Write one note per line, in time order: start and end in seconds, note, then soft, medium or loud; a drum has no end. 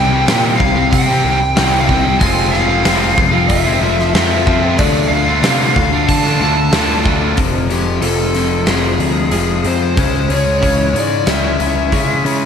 0.00 0.25 C2 medium
0.00 0.26 C3 medium
0.00 0.27 D#3 medium
0.00 0.12 G3 medium
0.00 0.12 C4 loud
0.00 0.54 G5 loud
0.11 0.27 G3 medium
0.11 0.29 C4 medium
0.11 0.28 G4 medium
0.28 0.57 A#2 medium
0.28 1.08 C3 medium
0.28 0.75 D#3 loud
0.28 0.76 G3 medium
0.28 0.75 C4 loud
0.28 0.75 G4 loud
0.28 snare loud
0.28 open hi-hat medium
0.57 0.89 C2 medium
0.57 0.92 F5 medium
0.57 muted distorted electric guitar stroke soft
0.57 kick medium
0.75 1.09 G3 medium
0.75 1.07 C4 medium
0.75 1.06 G4 medium
0.75 muted overdriven electric guitar stroke soft
0.90 1.22 C3 medium
0.90 1.84 G5 loud
0.90 kick medium
0.90 open hi-hat medium
1.07 1.22 G3 medium
1.07 1.23 C4 medium
1.07 1.24 G4 medium
1.23 1.54 C2 loud
1.23 1.40 D#3 medium
1.23 1.41 G3 medium
1.23 1.40 C4 medium
1.23 1.40 G4 medium
1.40 muted distorted electric guitar stroke medium
1.40 muted overdriven electric guitar stroke medium
1.57 2.18 C2 medium
1.57 2.19 C3 loud
1.57 1.88 D#3 loud
1.57 1.89 G3 medium
1.57 1.89 C4 loud
1.57 1.90 G4 loud
1.57 snare loud
1.57 open hi-hat medium
1.81 1.88 F5 medium
1.87 2.19 D#3 medium
1.87 2.05 G3 medium
1.87 2.05 C4 medium
1.87 2.03 G4 medium
1.87 2.18 G5 medium
1.87 kick medium
2.05 2.20 G3 medium
2.05 2.20 C4 medium
2.05 2.19 G4 medium
2.19 2.82 F1 loud
2.19 2.84 F3 loud
2.19 2.71 G#3 loud
2.19 2.69 C4 medium
2.19 2.69 F4 loud
2.19 2.50 G#5 loud
2.19 kick loud
2.19 open hi-hat medium
2.51 3.48 F5 medium
2.51 snare soft
2.69 2.84 G#3 medium
2.69 2.85 C4 medium
2.69 2.86 F4 medium
2.84 3.15 F1 medium
2.84 3.81 F3 medium
2.84 3.34 G#3 loud
2.84 3.33 C4 medium
2.84 3.34 F4 loud
2.84 snare loud
2.84 open hi-hat medium
3.15 3.47 F1 medium
3.15 muted distorted electric guitar stroke soft
3.15 kick medium
3.31 3.66 G#3 medium
3.31 3.65 C4 medium
3.31 3.64 F4 medium
3.31 muted overdriven electric guitar stroke soft
3.48 3.79 F1 medium
3.48 4.14 E5 medium
3.48 kick medium
3.48 open hi-hat medium
3.65 3.81 G#3 medium
3.65 3.81 C4 medium
3.65 3.83 F4 medium
3.81 4.12 F1 medium
3.81 4.14 F3 medium
3.81 3.98 G#3 medium
3.81 3.98 C4 medium
3.81 3.98 F4 medium
3.98 muted overdriven electric guitar stroke soft
3.98 muted distorted electric guitar stroke soft
3.98 snare soft
4.14 4.44 F2 medium
4.14 4.46 F3 loud
4.14 4.46 G#3 loud
4.14 4.47 C4 loud
4.14 4.47 F4 loud
4.14 4.78 E5 medium
4.14 snare loud
4.14 open hi-hat medium
4.46 4.76 F2 medium
4.46 4.78 F3 medium
4.46 4.63 G#3 medium
4.46 4.63 C4 medium
4.46 4.62 F4 medium
4.46 kick medium
4.63 4.78 G#3 medium
4.63 4.78 C4 medium
4.63 4.80 F4 medium
4.78 5.09 D2 medium
4.78 5.41 D3 medium
4.78 5.27 A3 medium
4.78 5.27 D4 loud
4.78 5.25 F4 loud
4.78 5.08 D5 medium
4.78 kick loud
4.78 open hi-hat medium
5.08 5.41 D2 medium
5.08 5.73 F5 medium
5.26 5.42 A3 medium
5.26 5.43 D4 medium
5.26 5.43 F4 medium
5.43 5.73 C3 loud
5.43 6.24 D3 medium
5.43 5.91 A3 medium
5.43 5.91 D4 medium
5.43 5.91 F4 loud
5.43 snare loud
5.43 open hi-hat medium
5.74 6.06 D2 medium
5.74 6.09 F5 medium
5.74 muted distorted electric guitar stroke soft
5.74 kick medium
5.92 6.27 A3 medium
5.92 6.26 D4 medium
5.92 6.24 F4 medium
5.92 muted overdriven electric guitar stroke soft
6.08 6.38 D3 medium
6.08 6.40 A5 medium
6.08 kick medium
6.08 open hi-hat medium
6.24 6.40 A3 medium
6.24 6.40 D4 medium
6.24 6.41 F4 medium
6.39 6.70 D2 medium
6.39 6.70 D3 medium
6.39 6.56 A3 medium
6.39 6.56 D4 medium
6.39 6.55 F4 medium
6.39 7.02 A5 medium
6.56 muted overdriven electric guitar stroke soft
6.56 muted distorted electric guitar stroke medium
6.71 7.34 D2 medium
6.71 7.04 D3 medium
6.71 7.05 A3 medium
6.71 7.06 D4 loud
6.71 7.06 F4 loud
6.71 snare loud
6.71 open hi-hat medium
6.77 7.07 D4 medium
6.77 7.07 F4 medium
7.05 7.36 D3 medium
7.05 7.23 A3 medium
7.05 7.22 D4 medium
7.05 7.21 F4 medium
7.05 kick medium
7.22 7.37 A3 medium
7.22 7.37 D4 medium
7.22 7.37 F4 medium
7.37 8.00 F1 medium
7.37 7.69 F2 medium
7.37 7.70 C3 medium
7.37 7.69 F3 medium
7.37 kick loud
7.37 open hi-hat medium
7.68 8.00 F2 medium
7.68 8.01 C3 medium
7.68 8.00 F3 medium
7.68 9.30 G#3 medium
7.68 8.02 G4 medium
7.68 open hi-hat medium
8.01 8.64 F1 medium
8.01 8.34 F2 medium
8.01 8.35 C3 medium
8.01 8.35 F3 loud
8.01 8.70 A4 medium
8.01 open hi-hat medium
8.35 8.66 F2 medium
8.35 8.67 C3 medium
8.35 8.67 F3 medium
8.35 snare soft
8.35 open hi-hat medium
8.67 8.98 F1 medium
8.67 8.99 F2 medium
8.67 8.99 C3 loud
8.67 9.00 F3 medium
8.67 9.63 C4 medium
8.67 snare loud
8.67 open hi-hat medium
8.72 9.70 G#4 medium
8.99 9.31 D2 medium
8.99 9.29 F2 medium
8.99 9.31 C3 medium
8.99 9.31 F3 medium
8.99 open hi-hat medium
9.30 9.64 F1 medium
9.30 9.64 F2 medium
9.30 9.65 C3 medium
9.30 9.65 F3 loud
9.30 9.97 G#3 medium
9.30 open hi-hat medium
9.64 9.96 F2 medium
9.64 9.96 C3 medium
9.64 9.97 F3 medium
9.64 9.97 C4 medium
9.64 10.32 C5 medium
9.64 open hi-hat soft
9.97 10.29 C#2 medium
9.97 10.27 C#3 medium
9.97 10.28 G#3 medium
9.97 10.29 C#4 loud
9.97 kick loud
9.97 open hi-hat medium
10.29 10.61 C#2 medium
10.29 10.60 C#3 medium
10.29 10.60 G#3 medium
10.29 10.61 C#4 medium
10.29 10.99 C#5 medium
10.29 open hi-hat soft
10.61 10.93 C#2 medium
10.61 10.92 C#3 medium
10.61 11.59 E3 medium
10.61 10.93 G#3 medium
10.61 10.93 C#4 medium
10.61 kick medium
10.61 open hi-hat medium
10.93 11.26 G#2 medium
10.93 11.24 C#3 medium
10.93 11.25 G#3 medium
10.93 11.25 C#4 medium
10.93 open hi-hat medium
10.99 11.30 D5 medium
11.26 11.59 C#2 medium
11.26 11.59 C#3 medium
11.26 11.59 G#3 loud
11.26 11.60 C#4 loud
11.26 snare loud
11.26 open hi-hat medium
11.31 12.23 E5 medium
11.59 11.91 C#2 medium
11.59 11.91 C#3 medium
11.59 12.46 E3 medium
11.59 11.92 G#3 medium
11.59 11.92 C#4 medium
11.59 open hi-hat medium
11.92 12.24 C#3 medium
11.92 12.25 G#3 loud
11.92 12.25 C#4 loud
11.92 kick medium
11.92 open hi-hat medium
12.25 12.46 C#3 medium
12.25 12.46 G#3 medium
12.25 12.46 C#4 medium
12.25 open hi-hat medium